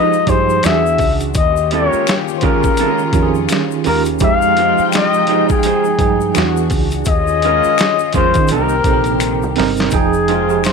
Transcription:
Already playing: horn section D#3 C4 F4, fretless electric bass F3, tine electric piano F3 G#3 D#4 F4 G4 G#4, string section F3 D#4 F4, clean electric guitar G#3 D#4 G4 C5, muted trumpet D#5
0.13 shaker
0.27 fretless electric bass G2, tine electric piano F3 D#4 G4 G#4, muted trumpet C5, kick, closed hi-hat, shaker
0.50 shaker
0.63 fretless electric bass E2, horn section D3 B3 G#4, tine electric piano E3 D4 F#4 G4, string section E3 D4 F#4, muted trumpet E5, finger snap, snare, closed hi-hat, shaker
0.72 tine electric piano G#4
0.86 shaker
0.98 fretless electric bass C#2, kick, open hi-hat, shaker
1.20 closed hi-hat, shaker
1.34 fretless electric bass D#2, horn section C#3 A#3 G4, string section D#3 C#4 F4, muted trumpet D#5, kick, closed hi-hat, shaker
1.57 shaker
1.71 clean electric guitar G3 C4 E4 A4, muted trumpet C#5, closed hi-hat
1.86 clean electric guitar G#3 C#4 F4 A#4
1.93 muted fretless electric bass stroke, shaker
2.07 finger snap, muted clean electric guitar stroke, snare, closed hi-hat, shaker
2.28 shaker
2.38 tine electric piano D#3, muted trumpet C5, closed hi-hat
2.43 clean electric guitar G#3 C#4 F4 A#4, tine electric piano C#4 F4 G#4, muted trumpet A#4, kick
2.64 kick, shaker
2.77 clean electric guitar G#3 C#4 F4 A#4, closed hi-hat, shaker
2.98 shaker
3.13 fretless electric bass F2, tine electric piano D#3 C#4 F4 G4, kick, closed hi-hat, shaker
3.23 tine electric piano G#4
3.35 shaker
3.49 finger snap, snare, closed hi-hat, shaker
3.71 shaker
3.84 fretless electric bass D#2, tine electric piano D#3 C#4 F4 G4, clean electric guitar G#3 C#4 F4 A#4, muted trumpet A#4, open hi-hat, shaker
4.05 closed hi-hat, shaker
4.19 fretless electric bass F2, horn section C3 G#3 F4, tine electric piano F3 G#3 D#4 G4, string section F3 D#4 G5, muted trumpet F5, kick, closed hi-hat, shaker
4.42 shaker
4.57 clean electric guitar G#3 D#4 G4 C5, closed hi-hat
4.78 muted fretless electric bass stroke, shaker
4.92 muted trumpet D#5, finger snap, muted clean electric guitar stroke, snare, closed hi-hat, shaker
5.14 shaker
5.27 tine electric piano F3 D#4 G#4 G5, clean electric guitar G#3 D#4 G4, closed hi-hat
5.31 clean electric guitar C5
5.49 muted trumpet G#4, kick, shaker
5.63 clean electric guitar G#3 D#4 G4 C5, closed hi-hat, shaker
5.84 shaker
5.99 fretless electric bass G2, tine electric piano F3 D#4 G#4 G5, kick, closed hi-hat, shaker
6.21 shaker
6.35 fretless electric bass E2, horn section D3 B3 F#4, tine electric piano E3 D4 F#4 G#4, string section E3 D4 F#4, finger snap, snare, closed hi-hat, shaker
6.57 shaker
6.70 fretless electric bass C#2, kick, open hi-hat, shaker
6.91 closed hi-hat, shaker
7.05 fretless electric bass D#2, string section D#3 C#4 F4, horn section F3 C#4 G#4, muted trumpet D#5, kick, closed hi-hat, shaker
7.27 shaker
7.42 clean electric guitar G#3 C#4 F4 A#4, closed hi-hat
7.64 muted fretless electric bass stroke, shaker
7.78 finger snap, muted clean electric guitar stroke, snare, closed hi-hat, shaker
7.99 shaker
8.13 fretless electric bass F2, tine electric piano D#3 C#4 F4 G#4, clean electric guitar G#3 C#4 F4, muted trumpet C5, kick, closed hi-hat, shaker
8.17 clean electric guitar A#4
8.34 fretless electric bass D#3, kick, closed hi-hat, shaker
8.48 fretless electric bass C2, string section D#3 A#3 C4 G4, horn section D#3 C4 G4, clean electric guitar G3, closed hi-hat, shaker
8.52 clean electric guitar C4 D#4 A#4, muted trumpet A#4
8.69 shaker
8.84 fretless electric bass A#1, tine electric piano C3 C4 D#4 A4, kick, closed hi-hat, shaker
8.94 tine electric piano A#4
9.04 closed hi-hat, shaker
9.20 finger snap, closed hi-hat, shaker
9.42 fretless electric bass C2, shaker
9.56 fretless electric bass G1, tine electric piano C3 C4 D#4 A#4, snare, open hi-hat
9.77 snare, shaker
9.91 fretless electric bass F1, tine electric piano F3 D#4 G#4 G5, muted trumpet G#4, kick, closed hi-hat, shaker
10.13 shaker
10.28 horn section C3 G#3 F4, clean electric guitar G#3 D#4 G4 C5, closed hi-hat
10.49 tine electric piano F3 D#4 G4 G#4, shaker
10.64 muted trumpet C5, finger snap, muted clean electric guitar stroke, snare, closed hi-hat, shaker

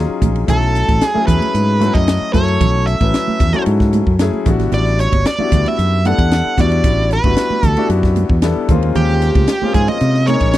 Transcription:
Already playing: grand piano F#3 C#4 D#4 F4 G#4
0.10 muted fingered electric bass stroke
0.22 fingered electric bass A#1, kick, hi-hat pedal, ride, high conga, low conga
0.36 ride
0.47 fingered electric bass B1, grand piano F#3 A3 C#4 E4 A4, lead electric guitar A4, kick, hi-hat pedal, ride, low conga
0.75 snare, hi-hat pedal, ride
0.89 fingered electric bass A1, kick, ride, high conga
1.01 snare, hi-hat pedal, ride
1.06 lead electric guitar G#4
1.14 grand piano F#3 A3 C#4 E4 G#4, muted fingered electric bass stroke, high conga
1.27 fingered electric bass E2, lead electric guitar B4, kick, hi-hat pedal, ride, low conga
1.41 ride, high conga
1.54 fingered electric bass G#2, hi-hat pedal, ride
1.80 grand piano F#3 A3 C#4 E4 F#4, hi-hat pedal, ride, high conga
1.94 fingered electric bass F#2, lead electric guitar D#5, kick, ride
2.08 snare, hi-hat pedal, ride
2.21 muted fingered electric bass stroke
2.33 fingered electric bass F#2, grand piano F#3 A3 C#4 E4 A4, lead electric guitar C#5, kick, hi-hat pedal, ride, high conga
2.48 ride
2.61 fingered electric bass B1, kick, hi-hat pedal, ride, low conga
2.87 lead electric guitar E5, hi-hat pedal, ride
3.01 fingered electric bass A1, grand piano F#3 A3 C#4 E4 B4, kick, ride, high conga
3.14 snare, hi-hat pedal, ride
3.28 muted fingered electric bass stroke, high conga
3.40 fingered electric bass E2, kick, hi-hat pedal, ride, low conga
3.53 grand piano F#3 C#4 E4 F#4 A4, ride, high conga
3.66 fingered electric bass G#2, hi-hat pedal, ride
3.80 kick, snare
3.93 hi-hat pedal, ride, high conga
4.07 fingered electric bass F#2, kick
4.19 grand piano F#3 A3 C#4 E4 G#4, snare, hi-hat pedal, ride
4.33 muted fingered electric bass stroke, high conga
4.45 fingered electric bass A1, grand piano G3 B3 D4 E4 F#4, kick, hi-hat pedal, ride, low conga
4.59 snare, ride, low conga
4.72 fingered electric bass A1, lead electric guitar D5, hi-hat pedal, ride, low conga
4.86 snare
4.99 lead electric guitar C#5, hi-hat pedal, ride
5.12 fingered electric bass G1, kick, ride, high conga
5.25 lead electric guitar D5, snare, hi-hat pedal, ride
5.39 grand piano G3 B3 D4 E4 F#4, muted fingered electric bass stroke, high conga
5.52 fingered electric bass D2, kick, hi-hat pedal, ride, low conga
5.66 lead electric guitar E5, ride, high conga
5.79 fingered electric bass F#2, hi-hat pedal, ride
6.05 grand piano G3 B3 D4 E4 A4, lead electric guitar F#5, hi-hat pedal, ride, high conga
6.18 fingered electric bass E2, kick, ride
6.32 snare, hi-hat pedal, ride
6.46 muted fingered electric bass stroke
6.57 fingered electric bass E2, grand piano G3 B3 D4 E4 F#4, lead electric guitar D5, kick, hi-hat pedal, ride, high conga, low conga
6.72 ride
6.84 fingered electric bass A1, kick, hi-hat pedal, ride, low conga
7.11 lead electric guitar B4, hi-hat pedal, ride
7.24 fingered electric bass G1, grand piano G3 B3 D4 E4 F#4, kick, ride, high conga
7.37 snare, hi-hat pedal, ride
7.50 muted fingered electric bass stroke, high conga
7.63 fingered electric bass D2, kick, hi-hat pedal, ride, low conga
7.67 lead electric guitar A4
7.77 grand piano B3 D4 E4 F#4 G4, ride, high conga
7.89 fingered electric bass F#2, hi-hat pedal, ride
8.03 kick, snare
8.16 hi-hat pedal, ride, high conga
8.29 fingered electric bass E2, kick
8.42 grand piano G3 B3 D4 E4 A4, snare, hi-hat pedal, ride
8.57 muted fingered electric bass stroke
8.69 fingered electric bass D#2, grand piano G#3 A#3 C4 C#4 F4, kick, hi-hat pedal, ride, high conga, low conga
8.83 ride
8.95 fingered electric bass D#2, lead electric guitar G4, hi-hat pedal, ride, low conga
9.09 snare
9.22 hi-hat pedal, ride
9.35 fingered electric bass C#2, kick, ride, high conga
9.48 snare, hi-hat pedal, ride
9.62 grand piano G#3 A#3 C4 C#4 F4, muted fingered electric bass stroke, high conga
9.74 fingered electric bass G#2, lead electric guitar G#4, kick, hi-hat pedal, ride, low conga
9.88 lead electric guitar D#5, ride, high conga
10.01 fingered electric bass C3, hi-hat pedal, ride
10.15 snare
10.27 grand piano G#3 A#3 C#4 D#4, lead electric guitar C#5, hi-hat pedal, ride, high conga
10.40 fingered electric bass A#1, kick, ride
10.53 snare, hi-hat pedal, ride

